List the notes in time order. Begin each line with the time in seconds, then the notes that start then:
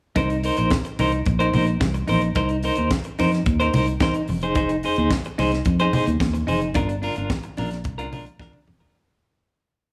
0.16 C2 D#4 A#4 C5, kick, closed hi-hat, muted conga
0.30 muted clean electric guitar stroke, closed hi-hat
0.43 D#4 A#4 C5, open hi-hat
0.57 A#1 D#4 A#4 C5, closed hi-hat
0.70 kick, snare, closed hi-hat, high conga
0.85 muted clean electric guitar stroke, closed hi-hat
0.99 C2 D#4 A#4 C5, open hi-hat, muted conga
1.12 closed hi-hat
1.26 A#1, muted clean electric guitar stroke, kick, closed hi-hat
1.39 D#4 A#4 C5, closed hi-hat
1.53 A#1 D#4 A#4 C5, open hi-hat, low conga
1.66 muted clean electric guitar stroke, closed hi-hat
1.80 C2, muted clean electric guitar stroke, kick, snare, closed hi-hat, high conga
1.94 muted clean electric guitar stroke, closed hi-hat
2.08 A#1 D#4 A#4 C5, open hi-hat, high conga
2.22 muted clean electric guitar stroke, closed hi-hat
2.35 C2 D#4 A#4 C5, kick, closed hi-hat, muted conga
2.49 muted clean electric guitar stroke, closed hi-hat
2.63 D#4 A#4 C5, open hi-hat, muted conga
2.75 D#2 D#4 A#4 C5, closed hi-hat
2.90 muted clean electric guitar stroke, kick, snare, closed hi-hat, high conga
3.04 muted clean electric guitar stroke, closed hi-hat
3.19 F2 D#4 A#4 C5, open hi-hat, muted conga
3.32 muted clean electric guitar stroke, snare, closed hi-hat
3.46 D#2, muted clean electric guitar stroke, kick, closed hi-hat
3.60 D#4 A#4 C5, closed hi-hat
3.73 C2 D#4 A#4 C5, open hi-hat, low conga
3.87 muted clean electric guitar stroke, closed hi-hat
4.00 D#4 A#4 C5, kick, snare, closed hi-hat, high conga
4.14 muted clean electric guitar stroke, closed hi-hat
4.28 F1, muted clean electric guitar stroke, open hi-hat, high conga
4.42 D#4 G#4 C5, closed hi-hat
4.55 D#4 G#4 C5, kick, closed hi-hat, muted conga
4.69 muted clean electric guitar stroke, closed hi-hat
4.83 D#4 G#4 C5, open hi-hat
4.96 D#2 D#4 G#4 C5, closed hi-hat
5.11 muted clean electric guitar stroke, kick, snare, closed hi-hat, high conga
5.24 muted clean electric guitar stroke, closed hi-hat
5.38 C2 D#4 G#4 C5, open hi-hat, muted conga
5.52 muted clean electric guitar stroke, snare, closed hi-hat
5.65 F2, muted clean electric guitar stroke, kick, closed hi-hat
5.79 D#4 G#4 C5, closed hi-hat
5.93 D#4 G#4 C5, open hi-hat, low conga
6.06 D#2, muted clean electric guitar stroke, closed hi-hat
6.20 D#2, muted clean electric guitar stroke, kick, snare, closed hi-hat, high conga
6.34 muted clean electric guitar stroke, closed hi-hat
6.47 F1 D#4 G#4 C5, open hi-hat, high conga
6.61 muted clean electric guitar stroke, closed hi-hat
6.74 G1 D4 F4 A#4, kick, closed hi-hat, muted conga
6.89 muted clean electric guitar stroke, closed hi-hat
7.02 D4 F4 A#4, open hi-hat
7.16 G1 D4 F4, closed hi-hat
7.30 muted clean electric guitar stroke, kick, snare, closed hi-hat, high conga
7.43 muted clean electric guitar stroke, closed hi-hat
7.57 A#1 D4 F4 A#4, open hi-hat, muted conga
7.71 muted clean electric guitar stroke, snare, closed hi-hat
7.84 C2, muted clean electric guitar stroke, kick, closed hi-hat
7.98 D4 F4 A#4, closed hi-hat
8.12 A#1 D4 F4 A#4, open hi-hat, low conga
8.26 muted clean electric guitar stroke, closed hi-hat
8.39 D4 F4 A#4, kick, snare, high conga
8.53 muted clean electric guitar stroke, high tom
8.67 F1, muted clean electric guitar stroke, mid tom, high conga
8.80 D4 F4 A#4, floor tom